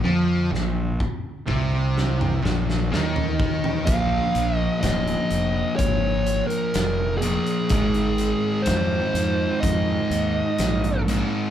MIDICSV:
0, 0, Header, 1, 5, 480
1, 0, Start_track
1, 0, Tempo, 958466
1, 23, Time_signature, 4, 2, 24, 8
1, 5761, End_track
2, 0, Start_track
2, 0, Title_t, "Lead electric guitar"
2, 0, Program_c, 0, 29
2, 1931, Note_on_c, 0, 77, 107
2, 2282, Note_off_c, 0, 77, 0
2, 2282, Note_on_c, 0, 75, 107
2, 2407, Note_off_c, 0, 75, 0
2, 2409, Note_on_c, 0, 75, 96
2, 2885, Note_on_c, 0, 73, 98
2, 2910, Note_off_c, 0, 75, 0
2, 3239, Note_off_c, 0, 73, 0
2, 3241, Note_on_c, 0, 70, 90
2, 3593, Note_on_c, 0, 68, 83
2, 3623, Note_off_c, 0, 70, 0
2, 4319, Note_on_c, 0, 72, 86
2, 4351, Note_off_c, 0, 68, 0
2, 4809, Note_on_c, 0, 75, 87
2, 4827, Note_off_c, 0, 72, 0
2, 5518, Note_off_c, 0, 75, 0
2, 5761, End_track
3, 0, Start_track
3, 0, Title_t, "Distorted electric guitar"
3, 0, Program_c, 1, 30
3, 15, Note_on_c, 1, 53, 112
3, 251, Note_off_c, 1, 53, 0
3, 257, Note_on_c, 1, 46, 84
3, 452, Note_off_c, 1, 46, 0
3, 736, Note_on_c, 1, 48, 91
3, 1212, Note_off_c, 1, 48, 0
3, 1215, Note_on_c, 1, 46, 114
3, 1451, Note_off_c, 1, 46, 0
3, 1454, Note_on_c, 1, 51, 98
3, 1930, Note_off_c, 1, 51, 0
3, 1931, Note_on_c, 1, 46, 92
3, 1935, Note_on_c, 1, 53, 99
3, 1942, Note_on_c, 1, 58, 110
3, 3602, Note_off_c, 1, 46, 0
3, 3604, Note_off_c, 1, 53, 0
3, 3608, Note_off_c, 1, 58, 0
3, 3618, Note_on_c, 1, 58, 89
3, 3625, Note_on_c, 1, 53, 79
3, 3627, Note_on_c, 1, 46, 74
3, 3846, Note_off_c, 1, 58, 0
3, 3850, Note_off_c, 1, 53, 0
3, 3851, Note_off_c, 1, 46, 0
3, 3860, Note_on_c, 1, 44, 95
3, 3868, Note_on_c, 1, 51, 98
3, 3874, Note_on_c, 1, 56, 107
3, 5530, Note_off_c, 1, 44, 0
3, 5534, Note_off_c, 1, 51, 0
3, 5537, Note_off_c, 1, 56, 0
3, 5549, Note_on_c, 1, 56, 87
3, 5555, Note_on_c, 1, 51, 83
3, 5561, Note_on_c, 1, 44, 72
3, 5761, Note_off_c, 1, 44, 0
3, 5761, Note_off_c, 1, 51, 0
3, 5761, Note_off_c, 1, 56, 0
3, 5761, End_track
4, 0, Start_track
4, 0, Title_t, "Fingered electric bass"
4, 0, Program_c, 2, 33
4, 22, Note_on_c, 2, 41, 99
4, 245, Note_off_c, 2, 41, 0
4, 257, Note_on_c, 2, 34, 77
4, 482, Note_off_c, 2, 34, 0
4, 740, Note_on_c, 2, 36, 99
4, 1201, Note_off_c, 2, 36, 0
4, 1220, Note_on_c, 2, 34, 95
4, 1444, Note_off_c, 2, 34, 0
4, 1463, Note_on_c, 2, 39, 89
4, 1922, Note_off_c, 2, 39, 0
4, 1940, Note_on_c, 2, 34, 101
4, 2093, Note_off_c, 2, 34, 0
4, 2179, Note_on_c, 2, 34, 95
4, 2333, Note_off_c, 2, 34, 0
4, 2419, Note_on_c, 2, 25, 92
4, 2573, Note_off_c, 2, 25, 0
4, 2658, Note_on_c, 2, 29, 87
4, 2812, Note_off_c, 2, 29, 0
4, 2897, Note_on_c, 2, 32, 102
4, 3204, Note_off_c, 2, 32, 0
4, 3379, Note_on_c, 2, 29, 92
4, 3685, Note_off_c, 2, 29, 0
4, 3857, Note_on_c, 2, 32, 91
4, 4164, Note_off_c, 2, 32, 0
4, 4338, Note_on_c, 2, 41, 93
4, 4493, Note_off_c, 2, 41, 0
4, 4576, Note_on_c, 2, 41, 95
4, 4731, Note_off_c, 2, 41, 0
4, 4821, Note_on_c, 2, 41, 97
4, 4975, Note_off_c, 2, 41, 0
4, 5058, Note_on_c, 2, 39, 94
4, 5213, Note_off_c, 2, 39, 0
4, 5302, Note_on_c, 2, 34, 96
4, 5610, Note_off_c, 2, 34, 0
4, 5761, End_track
5, 0, Start_track
5, 0, Title_t, "Drums"
5, 26, Note_on_c, 9, 48, 67
5, 77, Note_off_c, 9, 48, 0
5, 273, Note_on_c, 9, 38, 64
5, 323, Note_off_c, 9, 38, 0
5, 502, Note_on_c, 9, 36, 76
5, 552, Note_off_c, 9, 36, 0
5, 741, Note_on_c, 9, 36, 76
5, 791, Note_off_c, 9, 36, 0
5, 990, Note_on_c, 9, 38, 80
5, 1040, Note_off_c, 9, 38, 0
5, 1107, Note_on_c, 9, 45, 82
5, 1157, Note_off_c, 9, 45, 0
5, 1229, Note_on_c, 9, 38, 100
5, 1279, Note_off_c, 9, 38, 0
5, 1351, Note_on_c, 9, 38, 79
5, 1401, Note_off_c, 9, 38, 0
5, 1472, Note_on_c, 9, 38, 110
5, 1522, Note_off_c, 9, 38, 0
5, 1583, Note_on_c, 9, 43, 82
5, 1633, Note_off_c, 9, 43, 0
5, 1701, Note_on_c, 9, 36, 100
5, 1751, Note_off_c, 9, 36, 0
5, 1823, Note_on_c, 9, 43, 83
5, 1874, Note_off_c, 9, 43, 0
5, 1938, Note_on_c, 9, 42, 102
5, 1939, Note_on_c, 9, 36, 120
5, 1988, Note_off_c, 9, 42, 0
5, 1989, Note_off_c, 9, 36, 0
5, 2179, Note_on_c, 9, 42, 71
5, 2229, Note_off_c, 9, 42, 0
5, 2418, Note_on_c, 9, 42, 94
5, 2419, Note_on_c, 9, 36, 76
5, 2425, Note_on_c, 9, 38, 112
5, 2468, Note_off_c, 9, 42, 0
5, 2469, Note_off_c, 9, 36, 0
5, 2475, Note_off_c, 9, 38, 0
5, 2542, Note_on_c, 9, 42, 50
5, 2592, Note_off_c, 9, 42, 0
5, 2657, Note_on_c, 9, 42, 72
5, 2707, Note_off_c, 9, 42, 0
5, 2899, Note_on_c, 9, 36, 105
5, 2899, Note_on_c, 9, 42, 96
5, 2949, Note_off_c, 9, 36, 0
5, 2949, Note_off_c, 9, 42, 0
5, 3138, Note_on_c, 9, 42, 78
5, 3188, Note_off_c, 9, 42, 0
5, 3257, Note_on_c, 9, 42, 49
5, 3307, Note_off_c, 9, 42, 0
5, 3376, Note_on_c, 9, 42, 106
5, 3383, Note_on_c, 9, 38, 124
5, 3426, Note_off_c, 9, 42, 0
5, 3433, Note_off_c, 9, 38, 0
5, 3616, Note_on_c, 9, 42, 91
5, 3666, Note_off_c, 9, 42, 0
5, 3738, Note_on_c, 9, 42, 49
5, 3788, Note_off_c, 9, 42, 0
5, 3854, Note_on_c, 9, 42, 105
5, 3858, Note_on_c, 9, 36, 117
5, 3904, Note_off_c, 9, 42, 0
5, 3908, Note_off_c, 9, 36, 0
5, 3978, Note_on_c, 9, 42, 47
5, 4028, Note_off_c, 9, 42, 0
5, 4098, Note_on_c, 9, 42, 76
5, 4148, Note_off_c, 9, 42, 0
5, 4336, Note_on_c, 9, 42, 111
5, 4340, Note_on_c, 9, 36, 78
5, 4344, Note_on_c, 9, 38, 111
5, 4386, Note_off_c, 9, 42, 0
5, 4390, Note_off_c, 9, 36, 0
5, 4394, Note_off_c, 9, 38, 0
5, 4583, Note_on_c, 9, 42, 89
5, 4633, Note_off_c, 9, 42, 0
5, 4822, Note_on_c, 9, 36, 113
5, 4825, Note_on_c, 9, 42, 110
5, 4872, Note_off_c, 9, 36, 0
5, 4875, Note_off_c, 9, 42, 0
5, 5065, Note_on_c, 9, 42, 82
5, 5115, Note_off_c, 9, 42, 0
5, 5301, Note_on_c, 9, 42, 108
5, 5308, Note_on_c, 9, 38, 120
5, 5351, Note_off_c, 9, 42, 0
5, 5359, Note_off_c, 9, 38, 0
5, 5429, Note_on_c, 9, 42, 50
5, 5479, Note_off_c, 9, 42, 0
5, 5550, Note_on_c, 9, 42, 76
5, 5600, Note_off_c, 9, 42, 0
5, 5761, End_track
0, 0, End_of_file